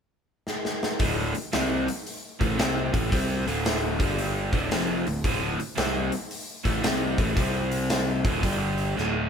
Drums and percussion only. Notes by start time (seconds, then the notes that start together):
0.47 snare
0.65 snare
0.83 snare
0.99 kick, open hi-hat
1.35 open hi-hat
1.53 snare, open hi-hat
1.88 open hi-hat
2.07 open hi-hat
2.41 kick, open hi-hat
2.59 snare, open hi-hat
2.94 kick, open hi-hat
3.12 kick, open hi-hat
3.48 open hi-hat
3.66 snare, open hi-hat
4.00 kick, open hi-hat
4.19 open hi-hat
4.53 kick, open hi-hat
4.71 snare, open hi-hat
5.07 open hi-hat
5.24 kick, open hi-hat
5.60 open hi-hat
5.78 snare, open hi-hat
6.12 open hi-hat
6.31 open hi-hat
6.65 kick, open hi-hat
6.84 snare, open hi-hat
7.18 kick, open hi-hat
7.37 kick, open hi-hat
7.72 open hi-hat
7.90 snare, open hi-hat
8.25 kick, open hi-hat
8.43 kick, open hi-hat
8.78 open hi-hat
8.97 snare